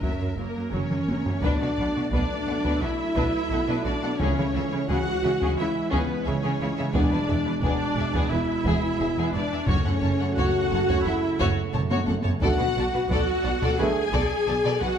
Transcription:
Already playing: A#4
0.01 F#1 F#2 F#3 C#4 E5, taiko
0.20 F#2 F#3
0.36 F#1 F#2 F#3 A#3 A#4
0.56 F#2 F#3
0.70 F#1 F#2 F#3 C#4 C#5, taiko mid
0.90 F#2 F#3, taiko mid
1.08 F#1 F#2 F#3, taiko high
1.26 F#2 F#3, taiko low
1.42 B1 B2 F#3 A3 D4 B4 D5, taiko
1.61 B2 F#4 D5
1.77 B1 B2 A4 F#5
1.96 B2 F#4 D5
2.11 B1 B2 D4 B4 D5, taiko
2.47 B1 B2 A4 F#5
2.65 B2 D4 B4, taiko
2.81 B1 B2 E4 F#4 D5 E5
3.16 B1 B2 D4 B4, taiko
3.51 B1 B2 A4 F#5
3.67 B2 D4 B4
3.84 B1 B2 D4 F#4 D5
4.03 B2 A4 F#5
4.18 C#2 C#3 E3 C#4 G#4 C#5, taiko
4.38 C#3 E4 C#5
4.55 C#2 C#3 G#4 E5
4.71 C#3 E4 C#5
4.89 C#2 C#3 G#3 C#4 F#4 G#4 F#5, taiko
5.24 C#2 C#3 G#4 E5
5.41 C#3 C#4 G#4, taiko
5.58 C#2 C#3 E4 C#5 E5
5.91 C#2 C#3 B3 C#4 G#4 B4, taiko
6.25 C#2 C#3 C#4 G#4 C#5 E5
6.43 C#3 C#4 G#4
6.61 C#2 C#3 E4 C#5
6.78 C#3 G#4 E5
6.93 E1 E2 B2 B3 D4 G#4 D5, taiko
7.12 E2 E4 B4
7.28 E1 E2 G#4 E5
7.46 E2 E4 B4
7.62 E1 E2 B3 D4 G#4 D5, taiko
7.96 E1 E2 G#4 E5
8.13 E2 B3 G#4, taiko
8.30 E1 E2 E4 B4 E5
8.65 E1 E2 B3 G#4, taiko
8.99 E1 E2 G#4 E5
9.17 E2 B3 G#4
9.31 E1 E2 D4 E4 B4 D5
9.51 E2 G#4 E5
9.66 F#1 F#2 C#3 A3 C#4 F#4 C#5, taiko
9.86 F#2 A4 F#5
10.02 F#1 F#2 C#5 A5
10.20 F#2 A4 F#5
10.36 F#1 F#2 F#4 C#5 F#5, taiko
10.72 F#1 F#2 C#5 A5
10.89 F#2 F#4 C#5, taiko
11.05 F#1 F#2 E4 A4 E5 F#5
11.39 F#1 F#2 F#4 C#5, taiko
11.74 F#1 F#2 C#5 A5, taiko low-mid
11.90 F#2 F#4 C#5, taiko high
12.06 F#1 F#2 A4 F#5, taiko high
12.23 F#2 C#5 A5, taiko low
12.41 B1 B2 D3 A3 F#4 A4 D5 F#5, taiko
12.58 B2 B4 F#5
12.76 B1 B2 D5 A5
12.94 B2 B4 F#5
13.09 B1 B2 F#4 A4 D5 F#5, taiko
13.44 B1 B2 D5 A5
13.62 B2 A4 D5, taiko
13.78 B1 B2 D3 A3 G#4 B4 F#5 G#5
14.12 B1 B2 A4 D5, taiko
14.47 B1 B2 D5 A5
14.64 B2 A4 D5
14.81 B1 B2 F#4 B4 F#5

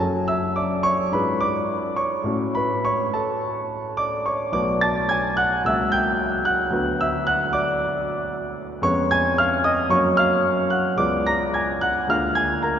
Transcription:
Already playing: F#2 C#4
0.00 F#4 A4 A5
0.28 E5 E6
0.56 D5 D6
0.83 C#5 C#6
1.11 G#2 C#4 F4 G#4 B4 B5
1.41 D5 D6
1.96 C#5 C#6
2.24 A2 A3 C#4 F#4
2.55 B4 B5
2.85 C#5 C#6
3.14 A4 A5
3.97 D5 D6
4.26 C#5 C#6
4.52 B1 A3 B3 F#4 D5 D6
4.81 A5 A6
5.09 G#5 G#6
5.37 F#5 F#6
5.64 C#2 F#3 A#3 F#4 E5 E6
5.92 G5 G6
6.45 F#5 F#6
6.70 D2 F#3 B3 F#4
7.01 E5 E6
7.27 F#5 F#6
7.53 D5 D6
8.82 F2 G#3 B3 C#4 C#5 C#6
9.11 G#5 G#6
9.38 F5 F6
9.64 D#5 D#6
9.89 F#2 F#3 A#3 C#4 C#5 C#6
10.17 F5 F6
10.70 F#5 F#6
10.97 C#2 G#3 B3 F4 D5 D6
11.27 A#5 A#6
11.54 G#5 G#6
11.81 F#5 F#6
12.07 D2 G#3 A#3 F4 F5 F6
12.35 G#5 G#6
12.63 A#4 A#5

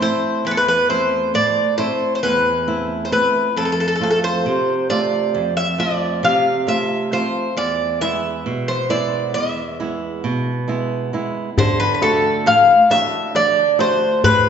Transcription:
Already playing: A2
0.00 A3 C4 E4 C5
0.45 E2 B4
0.51 A4
0.57 B4
0.68 B4
0.89 A3 C4 E4 C5
1.34 A2 D5
1.78 A3 C4 E4 C5
2.15 C5
2.23 E2 B4
2.67 A3 C4 E4
3.05 C5
3.12 A3 C4 E4 B4
3.56 F2 A4
3.65 A4
3.72 A4
3.80 A4
3.88 A4
3.96 A4
4.00 A3 C4 F4 A4
4.11 A4
4.24 C5
4.46 C3
4.89 A3 C4 F4 D5
5.35 F2
5.57 E5
5.78 A3 C4 F4 D5
6.23 C3 F5
6.67 A3 C4 F4 E5
7.12 A3 C4 F4 C5
7.57 E2 D5
8.01 G#3 B3 E4 E5
8.46 B2
8.68 C5
8.89 G#3 B3 E4 D5
9.34 E2 E5
9.80 G#3 B3 E4
10.24 B2
10.68 G#3 B3 E4
11.13 G#3 B3 E4
11.58 D3 C5, darbuka dum
11.80 B4, darbuka tek
11.94 B4
12.02 A3 D4 F#4 A4, darbuka tek
12.46 A2 F5, darbuka tek
12.90 A3 D4 F#4 E5, darbuka tek
13.35 D3 D5, darbuka tek
13.79 A3 D4 F#4 C5, darbuka tek
14.24 A2 B4, darbuka dum

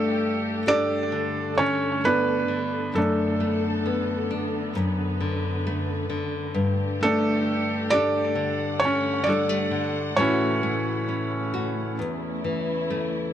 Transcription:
Already playing: G2 D3 A3 D4 G4 A4
0.67 D4 G4 A4 D5
1.12 D3 A4
1.57 D3 C#4 C#5
2.04 A3 B3 D4 B4
2.48 D3
2.93 F#2 B3 A4
2.98 A3 D4
3.40 A3
3.86 B3
4.31 D4
4.75 F#2 B4
5.21 D3
5.67 A3
6.10 D3
6.54 G2 A3 G4
7.01 A3 D4 A4
7.90 D4 G4 A4 D5
8.35 D3 F#5
8.80 D3 C#5
8.85 C#4
9.24 G3 D5
9.29 D4 A4
9.49 A3
9.71 D3
10.16 A2 C#3 E3 A3 C#4 F#4 C#5
10.21 C#4 E4 F#4
10.63 A3
11.09 C#4
11.54 F#4
11.97 E2 E4
12.44 E3
12.90 A3

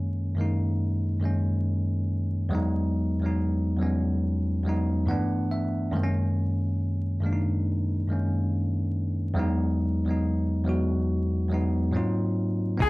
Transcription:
Already playing: F#2 D#3 G#3 A#3 C#4
0.36 F#2 D#3 G#3
0.40 A#3 D#4
1.20 F#2 D#3 G#3
1.24 A#3 C#4
2.49 E2 F#3 G#3
2.53 B3 D#4
3.20 E2 F#3 G#3
3.25 B3 D#4
3.77 E2 F#3 G3
3.81 B3 C#4
3.86 G#3
4.64 E2 F#3 G#3
4.68 B3 D#4
5.06 G2 E3 A3 F#5
5.10 B3 D4
5.52 E5
5.92 F#2 D#3 G#3
5.96 A#3 C4
6.03 C#4
7.20 F#2 D#3 G#3
7.25 A#3 D4
7.33 D#4
8.07 F#2 D#3 G#3
8.11 A#3 C#4
9.34 E2 F#3 G#3 B3
9.39 D#4
10.05 E2 F#3 G#3
10.09 B3 D#4
10.64 E2 F#3 G#3
10.68 B3 F#4
11.49 E2 F#3 G#3
11.53 B3 D#4
11.92 G#2 F#3 A#3 C4
11.96 D#4 F4
12.78 C#2 B3 D#4 F4, kick
12.82 G#4, shaker

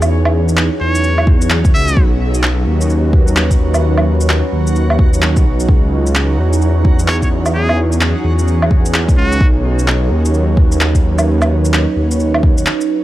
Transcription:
Already playing: E2 E3 F#3 C#4 D#4 F#4 G#4 C#5
0.02 low woodblock, shaker
0.25 low woodblock
0.49 shaker
0.57 clap
0.81 E2 C#5
0.95 shaker
1.04 shaker
1.18 low woodblock
1.27 kick
1.41 shaker
1.50 clap
1.65 kick, shaker
1.74 C#2 E5
1.88 shaker
1.97 B1 F#3, kick
2.32 B4, shaker
2.43 clap
2.67 D#2
2.81 shaker
2.90 shaker
3.13 kick
3.28 shaker
3.36 clap
3.51 kick, shaker
3.74 low woodblock, shaker
3.97 low woodblock
4.21 shaker
4.29 clap
4.53 D#2
4.67 shaker
4.76 shaker
4.90 low woodblock
4.99 kick
5.14 shaker
5.22 clap
5.37 kick, shaker
5.45 B1
5.60 shaker
5.69 C#2 E3, kick
6.07 G#4, shaker
6.15 clap
6.38 E2
6.53 shaker
6.62 shaker
6.85 kick
6.99 shaker
7.08 C#5, clap
7.22 C#5, kick, shaker
7.46 low woodblock, shaker
7.54 G#4
7.69 low woodblock
7.92 shaker
8.01 clap
8.24 E2
8.39 shaker
8.48 shaker
8.62 low woodblock
8.71 kick
8.86 shaker
8.94 clap
9.09 kick, shaker
9.17 C#2 F#4
9.32 shaker
9.40 B1 F#3, kick
9.79 shaker
9.88 clap
10.03 B4
10.11 D#2
10.25 shaker
10.34 shaker
10.57 kick
10.72 shaker
10.81 clap
10.95 kick, shaker
11.18 low woodblock, shaker
11.42 low woodblock, shaker
11.65 shaker
11.74 clap
11.96 D#2
12.11 shaker
12.20 shaker
12.34 low woodblock
12.43 kick
12.57 D#2, shaker
12.66 clap
12.81 shaker

